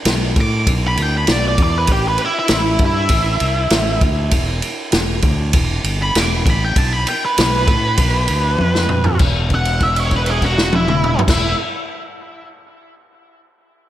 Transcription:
0.05 B1, snare, ride
0.36 A2, kick, ride
0.41 D6
0.67 B1, kick, ride
0.87 B5
0.96 D2, ride
1.02 G5
1.17 B5
1.27 B1, snare, ride
1.32 D5
1.48 D5
1.58 E2, kick, ride
1.63 D5
1.78 B4
1.87 A1, kick, ride
1.92 G4
2.08 B4
2.18 ride
2.25 E4
2.39 E4
2.48 A1, snare, ride
2.53 E4
2.79 G2, kick, ride
2.85 E4
3.09 A1, kick, ride
3.40 C2, ride
3.70 A1, snare, ride
4.01 D2, kick, ride
4.31 E1, kick, ride
4.62 ride
4.92 E1, snare, ride
5.22 D2, kick, ride
5.53 E1, kick, ride
5.84 G1, ride
6.02 B5
6.15 E1, snare, ride
6.20 D6
6.46 A1, kick, ride
6.50 B5
6.64 G5
6.76 B1 A5, kick, ride
6.93 B5
7.07 G5, ride
7.25 B4
7.38 B1 B4, snare, ride
7.67 A2, kick, ride
7.97 B1, kick, ride
8.28 D2, ride
8.58 F2, high tom
8.75 snare
8.89 mid tom
9.04 floor tom
9.19 E1, kick, crash
9.50 kick, crash
9.55 F#5
9.65 crash
9.80 E5, kick, crash
9.96 C#5, crash
10.11 kick, crash
10.16 B4
10.26 crash
10.31 G#4
10.42 F#4, kick, crash
10.58 snare
10.73 E4, high tom
10.88 mid tom
11.04 mid tom
11.19 floor tom
11.28 E1 E4, kick, snare, crash

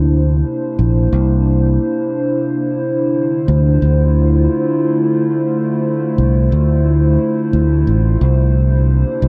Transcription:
Already playing: D2 C3 A#3 D4 E4 C5
0.79 A#1
1.13 C2
2.82 D3
3.35 A3 F4
3.48 D2
3.82 D2
6.18 C2
6.52 D2
7.53 D2
7.87 A1
8.21 C2 C3
8.43 D4
8.62 A#3
9.22 C2

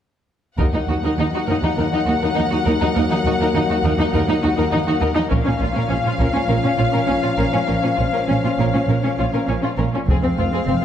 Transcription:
0.58 D#2 F#3 A#3 D#4 A#4 F#5, taiko
0.73 D#2 D#4
0.88 D#2 D#4 F#4
1.03 D#2 D#4 A#4
1.18 D#2 D#4
1.33 D#2 D#4 F#4
1.48 D#2 D#4 A#4
1.63 D#2 D#4
1.77 D#2 D#4 A#4
1.92 D#2 D#4
2.06 D#2 D#4 F#4
2.22 D#2 D#4 A#4
2.35 D#2 D#4
2.50 D#2 D#4 F#4
2.65 D#2 D#4 A#4
2.80 D#2 D#4
2.95 D#2 D#4 A#4
3.11 D#2 D#4
3.25 D#2 D#4 F#4
3.40 D#2 D#4 A#4
3.54 D#2 D#4
3.69 D#2 D#4 F#4
3.84 D#2 D#4 A#4
3.98 D#2 D#4
4.13 D#2 D#4 A#4
4.28 D#2 D#4
4.43 D#2 D#4 F#4
4.57 D#2 D#4 A#4
4.71 D#2 D#4
4.87 D#2 D#4 F#4
5.01 D#2 D#4 A#4
5.15 D#2 D#4
5.29 A#1 F3 C#4 A#4 F5, taiko
5.33 A#2
5.44 A#2 C#4
5.58 A#1 A#2 C#4 F4
5.73 A#2 C#4 A#4
5.89 A#1 A#2 C#4
6.03 A#2 C#4 F4
6.19 A#1 A#2 C#4 A#4, taiko
6.33 A#2 C#4
6.48 A#1 A#2 C#4 A#4
6.63 A#2 C#4
6.77 A#1 A#2 C#4 F4
6.92 A#2 C#4 A#4
7.07 A#1 A#2 C#4
7.23 A#2 C#4 F4
7.37 A#1 A#2 C#4 A#4
7.53 A#2 C#4
7.66 A#1 A#2 C#4 A#4
7.82 A#2 C#4
7.96 A#1 A#2 C#4 F4
8.13 A#2 C#4 A#4
8.28 A#1 A#2 C#4
8.44 A#2 C#4 F4
8.59 A#1 A#2 C#4 A#4
8.74 A#2 C#4
8.88 A#1 A#2 C#4 A#4
9.03 A#2 C#4
9.19 A#1 A#2 C#4 F4
9.33 A#2 C#4 A#4
9.47 A#1 A#2 C#4
9.62 A#2 C#4 F4
9.78 A#1 A#2 C#4 A#4
9.94 A#2 C#4
10.08 F1 F2 G#3 C4 G#4 F5, taiko
10.23 F2 C4
10.38 F1 F2 C4 F4
10.52 F2 C4 G#4
10.67 F1 F2 C4

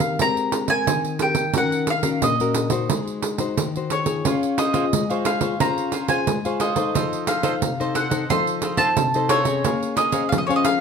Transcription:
Already playing: D#3 C4 G4 A#4 F5
0.00 pandeiro
0.19 G#3 C4 G4 A#4 A#5, pandeiro
0.37 pandeiro
0.52 pandeiro
0.68 C4 A#4 G#5, pandeiro
0.87 D#3, pandeiro
1.05 pandeiro
1.19 C4 G4 A#4 G5, pandeiro
1.35 pandeiro
1.54 D#3 C#4 F#4 A#4, pandeiro
1.58 F#5
1.72 pandeiro
1.87 F5, pandeiro
2.03 C#4 F#4 A#4, pandeiro
2.22 A#2 D#5, pandeiro
2.40 C#4 F#4 A#4, pandeiro
2.54 pandeiro
2.70 D#4 F#4 C5, pandeiro
2.90 G#3, pandeiro
3.08 pandeiro
3.23 pandeiro
3.38 D#4 F#4 C5, pandeiro
3.57 D#3, pandeiro
3.76 D#4 F#4 C5, pandeiro
3.90 C#5, pandeiro
4.06 F4 G#4, pandeiro
4.25 C#4 F4 C#5 F5, pandeiro
4.43 pandeiro
4.58 F4 C5 C#5 D#5 F5, pandeiro
4.73 F4 G#4 C5 C#5 F5, pandeiro
4.93 G#3, pandeiro
5.10 F4 G#4 C5 C#5 F5, pandeiro
5.25 F4 C5 C#5 F5, pandeiro
5.40 F4 G#4 C5 C#5 F5, pandeiro
5.60 C#4 F4 G#4 C5 C#5 F5 A#5, pandeiro
5.78 pandeiro
5.92 F4 C5 C#5 F5, pandeiro
6.08 F4 G#4 C5 C#5 F5 G#5, pandeiro
6.27 G#3, pandeiro
6.45 F4 G#4 C5 C#5 F5, pandeiro
6.60 F4 C5 C#5 D#5 F5, pandeiro
6.76 D#4 A4 C5 C#5 F5, pandeiro
6.95 F3 F4 A4 C5 D#5, pandeiro
7.13 pandeiro
7.27 F4 A4 C5 D#5 F5, pandeiro
7.43 D#4 F4 A4 C5 D#5, pandeiro
7.62 C3, pandeiro
7.80 D#4 A4 C5 D#5, pandeiro
7.94 F4 A4 C5 D#5 F#5, pandeiro
8.10 D#4 A4 C5 D#5, pandeiro
8.29 F3 D#4 F4 A4 C5 D#5 C6, pandeiro
8.47 pandeiro
8.62 F4 A4 C5 D#5, pandeiro
8.77 D#4 F4 A4 C5 D#5 A5, pandeiro
8.97 C3, pandeiro
9.14 D#4 A4 C5 D#5, pandeiro
9.29 F4 A4 C5 C#5 D#5, pandeiro
9.45 C#4 G#4 A4 C5 D#5, pandeiro
9.64 A#3 A#4 C#5 F5 G#5, pandeiro
9.83 pandeiro
9.96 A#4 C#5 D#5 F5 G#5, pandeiro
10.12 C#4 G#4 A#4 C5 C#5 F5 G#5, pandeiro
10.29 F3 F5, pandeiro
10.38 D#5
10.47 C#4 G#4 C5 C#5 F5 G#5, pandeiro
10.56 D#5
10.64 A#4 C#5 F5 G#5, pandeiro

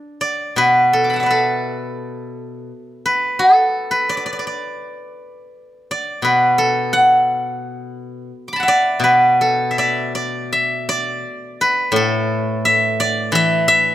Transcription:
Already playing: D4
0.21 D5
0.56 B2 B4
0.93 A4
1.04 D6
1.10 A5 B5
1.16 E5 F#5
1.23 B4 D5
1.30 A4
3.06 B4
3.39 A4
3.91 B4
4.09 D5
4.17 D5
4.26 D5
4.33 D5
4.39 D5
4.47 D5
5.91 D5
6.22 B2 B4
6.58 A4
6.93 F#5
8.48 D6
8.53 A5 B5
8.60 E5 F#5
8.68 D5
9.00 B2
9.04 B4
9.41 A4
9.71 E5
9.78 D5 E5
10.15 D5
10.53 E5
10.89 D5
11.61 B4
11.92 A2
11.96 A4
12.65 E5
13.00 D5
13.32 E3 E5
13.68 E5

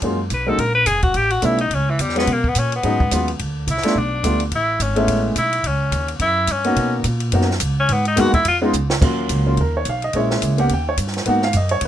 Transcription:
0.02 F#2 F#3 G#3 A#3 C#4 F4, kick, ride
0.30 B1 B4, kick, hi-hat pedal, ride
0.47 F#3 G#3 A#3 C#4 D#4 A4
0.58 A#1 A#4, kick, ride
0.75 B4
0.86 F1 G#4, kick, hi-hat pedal, ride
1.02 F#4, kick, ride
1.14 A1 G4, kick, ride
1.30 F#4, ride
1.42 B1 G3 A3 B3 C#4 E4, kick, hi-hat pedal, ride
1.58 D#4, ride
1.71 C#2 C#4, kick, ride
1.90 E3
1.99 E2 G3, kick, hi-hat pedal, ride
2.09 snare
2.16 F#3 G#3 B3 C#4 F#4, snare, ride
2.27 B2, kick, ride
2.32 A#3
2.44 kick
2.48 B3
2.55 A#2, kick, hi-hat pedal, ride
2.59 C#4
2.72 B3, ride
2.83 G#2 F#3 G#3 B3 C#4 D#4, kick, ride
3.00 kick
3.11 D#2 F#3 G#3 B3 C#4 F4, kick, hi-hat pedal, ride
3.28 ride
3.39 D2, kick, ride
3.67 C2 E4, kick, hi-hat pedal, ride
3.77 snare
3.83 G3 A3 B3 D4 F4, muted upright bass stroke, snare, ride
3.95 B1 D4, kick
4.24 D2 G3 A3 B3 D4 F4, kick, hi-hat pedal, ride
4.40 ride
4.52 A1, kick, ride
4.56 E4
4.80 G#1 C#4, kick, hi-hat pedal, ride
4.96 G#3 A3 B3 C#4 E4, ride
5.08 A1, kick, ride
5.36 B1 E4, kick, hi-hat pedal, ride
5.53 ride
5.64 C#2 C#4, kick, ride
5.92 D#2, kick, hi-hat pedal, ride
6.08 ride
6.19 F#2 E4, kick, ride
6.47 G2, kick, hi-hat pedal, ride
6.52 C#4
6.64 A#3 B3 C#4 D#4 F#4, ride
6.76 B2, kick, ride
7.04 A#2, kick, hi-hat pedal, ride
7.20 ride
7.32 F#2 A#3 B3 C#4 D#4 F#4, kick, ride
7.41 snare
7.51 snare
7.60 C#2, kick, hi-hat pedal, ride
7.80 C#4
7.89 G#2, kick, ride
7.93 B3
8.05 D#4, ride
8.16 F#2 G#3 A#3 B3 D#4 F#4, kick, hi-hat pedal, ride
8.33 E4, muted upright bass stroke, kick, ride
8.45 F2 F4, kick, ride
8.61 G#3 B3 C#4 D#4 F4
8.73 C#2, hi-hat pedal
8.90 snare
9.01 D#2 F#3 A#3 C#4 F4, kick, crash
9.29 C#2, kick, hi-hat pedal, ride
9.46 F#3 A#3 C#4 F4
9.57 D#2 A#4, kick, ride
9.77 C#5
9.85 B1, kick, hi-hat pedal, ride
9.89 F5
10.02 D#5, ride
10.13 A#1 G#3 A#3 C#4 E4 C#5, kick, ride
10.31 snare
10.42 C#2, kick, hi-hat pedal, ride
10.58 A#3 B3 C#4 G4 F#5, ride
10.69 D#2, kick, ride
10.73 G5
10.89 C#5
10.97 G2, kick, hi-hat pedal, ride
11.07 snare
11.14 snare, ride
11.26 G#2 A#3 B3 D#4 F#4 F#5, kick, ride
11.42 F5, snare
11.53 F#2 D#5, kick, hi-hat pedal, ride
11.69 C#5, ride
11.81 D#2, kick, ride

